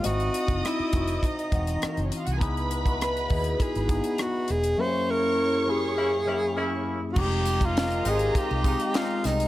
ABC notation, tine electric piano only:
X:1
M:4/4
L:1/16
Q:1/4=101
K:Fm
V:1 name="Tine electric piano"
[CE_F_G]4 z2 [CEFG]3 z [_F,CEG]4 z2 | [_CE_FA]2 z [CEF_G]2 z [CEFA]3 z [CEFA]4 z2 | [_G,,B,D_F=GA]4 z2 [_G,,B,DF=GA]3 z [_G,,B,DFA]4 z2 | [A,CEG]2 z [A,CEB]2 z [A,CEG]3 z [A,CEFG]4 z2 |]